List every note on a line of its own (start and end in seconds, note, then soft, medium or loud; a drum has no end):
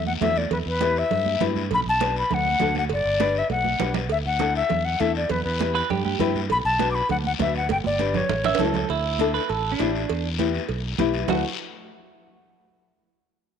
0.00 0.15 E2 medium
0.06 0.13 F#5 medium
0.06 high conga medium
0.21 0.45 E2 medium
0.21 0.42 D4 medium
0.21 0.43 E4 medium
0.21 0.43 A4 medium
0.21 0.39 E5 medium
0.21 cowbell medium
0.21 high conga medium
0.21 low conga medium
0.21 low timbale medium
0.21 short guiro medium
0.36 0.52 D5 medium
0.36 high conga medium
0.36 short guiro medium
0.51 0.63 E2 medium
0.51 0.58 B4 medium
0.51 cowbell loud
0.51 high conga soft
0.51 low conga medium
0.51 long guiro medium
0.66 1.02 E2 medium
0.66 1.00 B4 medium
0.81 1.02 E4 medium
0.81 1.03 G4 medium
0.81 1.03 B4 medium
0.81 cowbell medium
0.81 high conga medium
0.81 short guiro medium
0.96 1.44 E5 medium
0.96 short guiro medium
1.11 1.35 G2 medium
1.11 cowbell medium
1.11 high conga soft
1.11 low conga medium
1.11 long guiro medium
1.26 high conga medium
1.40 1.72 G2 medium
1.40 1.62 E4 medium
1.40 1.62 G4 medium
1.40 1.62 B4 medium
1.40 cowbell medium
1.40 high conga medium
1.40 low conga medium
1.40 low timbale medium
1.40 short guiro medium
1.56 high conga medium
1.56 short guiro medium
1.71 1.83 B1 loud
1.71 1.80 B5 loud
1.71 cowbell loud
1.71 high conga soft
1.71 low conga medium
1.71 long guiro medium
1.86 2.22 B1 loud
1.86 2.16 A5 loud
2.00 2.22 D4 medium
2.00 2.22 F#4 medium
2.00 2.22 B4 medium
2.00 cowbell medium
2.00 high conga medium
2.00 short guiro medium
2.16 2.35 B5 medium
2.16 short guiro medium
2.31 2.55 D2 medium
2.31 2.77 F#5 loud
2.31 cowbell medium
2.31 high conga soft
2.31 low conga medium
2.31 long guiro medium
2.45 high conga medium
2.60 2.92 D2 medium
2.60 2.82 D4 medium
2.60 2.82 F#4 medium
2.60 2.82 A4 medium
2.60 cowbell medium
2.60 high conga medium
2.60 low conga medium
2.60 low timbale medium
2.60 short guiro medium
2.75 2.84 F#5 medium
2.75 high conga medium
2.75 short guiro medium
2.90 3.02 G1 medium
2.90 3.40 D5 loud
2.90 cowbell loud
2.90 high conga soft
2.90 long guiro medium
3.05 3.41 G1 medium
3.20 3.41 D4 medium
3.20 3.41 G4 medium
3.20 3.41 B4 medium
3.20 cowbell medium
3.20 high conga medium
3.20 short guiro medium
3.35 3.50 E5 medium
3.35 short guiro medium
3.50 3.74 B1 medium
3.50 3.93 F#5 loud
3.50 cowbell medium
3.50 high conga medium
3.50 long guiro medium
3.64 high conga medium
3.79 4.10 B1 medium
3.79 4.01 D4 medium
3.79 4.01 G4 medium
3.79 4.01 B4 medium
3.79 cowbell medium
3.79 low conga medium
3.79 low timbale medium
3.79 short guiro medium
3.94 low conga medium
3.94 short guiro medium
4.09 4.22 D2 loud
4.09 4.18 E5 medium
4.09 cowbell loud
4.09 high conga soft
4.09 long guiro medium
4.26 4.61 D2 medium
4.26 4.54 F#5 medium
4.39 4.61 D4 medium
4.39 4.61 E4 medium
4.39 4.61 A4 medium
4.39 cowbell medium
4.39 high conga loud
4.39 short guiro medium
4.55 4.87 E5 medium
4.55 short guiro medium
4.70 4.94 E2 medium
4.70 cowbell medium
4.70 high conga soft
4.70 low conga medium
4.70 long guiro medium
4.85 5.02 F#5 medium
5.00 5.24 E2 medium
5.00 5.21 D4 medium
5.00 5.21 E4 medium
5.00 5.21 A4 medium
5.00 5.15 E5 medium
5.00 cowbell medium
5.00 high conga medium
5.00 short guiro medium
5.15 5.32 D5 medium
5.15 short guiro medium
5.29 5.42 E2 loud
5.29 5.44 B4 medium
5.29 cowbell loud
5.29 high conga soft
5.29 low conga medium
5.29 long guiro medium
5.44 5.81 E2 medium
5.44 5.73 B4 medium
5.59 5.81 E4 medium
5.59 5.81 G4 medium
5.59 5.82 B4 medium
5.59 cowbell medium
5.59 high conga medium
5.59 short guiro medium
5.75 5.89 B4 loud
5.75 short guiro medium
5.90 6.14 G2 medium
5.90 6.04 G4 loud
5.90 cowbell medium
5.90 high conga soft
5.90 low conga medium
5.90 long guiro medium
6.05 6.40 G4 medium
6.05 high conga medium
6.19 6.51 G2 medium
6.19 6.41 E4 medium
6.19 6.41 G4 medium
6.19 6.41 B4 loud
6.19 cowbell medium
6.19 high conga medium
6.19 low conga medium
6.19 low timbale medium
6.19 short guiro medium
6.35 high conga medium
6.35 short guiro medium
6.50 6.62 B1 medium
6.50 6.58 B5 loud
6.50 cowbell loud
6.50 long guiro medium
6.65 7.01 B1 loud
6.65 6.89 A5 loud
6.79 7.00 D4 medium
6.79 7.01 F#4 medium
6.79 7.01 B4 medium
6.79 cowbell medium
6.79 high conga medium
6.79 short guiro medium
6.91 7.10 B5 medium
6.91 6.96 D6 medium
6.95 short guiro medium
7.09 7.33 D2 medium
7.09 7.17 F#5 medium
7.09 cowbell medium
7.09 high conga soft
7.09 low conga medium
7.09 long guiro medium
7.24 7.32 F#5 medium
7.24 high conga medium
7.39 7.71 D2 medium
7.39 7.60 D4 medium
7.39 7.60 F#4 medium
7.39 7.60 B4 medium
7.39 7.54 E5 medium
7.39 cowbell medium
7.39 high conga medium
7.39 low conga medium
7.39 low timbale medium
7.39 short guiro medium
7.55 7.70 F#5 medium
7.55 short guiro medium
7.69 7.82 G1 medium
7.69 7.77 G5 loud
7.69 cowbell loud
7.69 high conga medium
7.69 long guiro medium
7.84 8.20 G1 medium
7.84 8.18 D5 medium
7.84 high conga medium
7.99 8.20 D4 medium
7.99 8.20 G4 medium
7.99 8.21 B4 medium
7.99 cowbell medium
7.99 high conga medium
7.99 short guiro medium
8.14 8.75 C#5 medium
8.14 low conga medium
8.14 short guiro medium
8.29 8.53 A1 medium
8.29 cowbell medium
8.29 low conga medium
8.29 long guiro medium
8.44 8.60 E5 loud
8.44 low conga medium
8.44 high timbale medium
8.55 low conga loud
8.55 high timbale medium
8.59 8.84 C#2 medium
8.59 8.80 C#4 medium
8.59 8.80 E4 medium
8.59 8.81 A4 medium
8.59 8.88 A4 medium
8.59 cowbell medium
8.59 short guiro medium
8.65 low timbale medium
8.74 low conga medium
8.74 low timbale medium
8.74 short guiro medium
8.89 9.37 D2 medium
8.89 9.31 E4 medium
8.89 cowbell loud
8.89 high conga soft
8.89 long guiro medium
9.19 9.40 D4 medium
9.19 9.41 E4 medium
9.19 9.41 A4 loud
9.19 cowbell medium
9.19 high conga medium
9.19 short guiro medium
9.34 9.49 B4 loud
9.34 short guiro medium
9.49 9.74 A1 medium
9.49 9.72 A4 loud
9.49 cowbell medium
9.49 high conga soft
9.49 long guiro medium
9.72 10.28 D4 medium
9.79 10.04 A1 medium
9.79 10.00 D4 medium
9.79 10.00 E4 medium
9.79 10.01 G4 medium
9.79 cowbell medium
9.79 high conga medium
9.79 low timbale medium
9.79 short guiro medium
9.95 short guiro medium
10.09 10.57 E2 loud
10.09 cowbell loud
10.09 high conga soft
10.09 long guiro medium
10.38 10.60 B3 medium
10.38 10.60 E4 medium
10.38 10.60 G4 loud
10.38 cowbell medium
10.38 high conga medium
10.38 short guiro medium
10.55 short guiro medium
10.69 10.93 B1 medium
10.69 cowbell medium
10.69 high conga soft
10.69 long guiro medium
10.99 11.23 B1 loud
10.99 11.20 B3 medium
10.99 11.20 E4 medium
10.99 11.20 G4 loud
10.99 cowbell medium
10.99 high conga medium
10.99 low conga medium
10.99 short guiro medium
11.14 short guiro medium
11.28 11.43 D2 medium
11.28 11.43 A3 medium
11.28 11.43 D4 medium
11.28 11.43 F#4 medium
11.28 low conga loud
11.28 low timbale loud
11.28 long guiro loud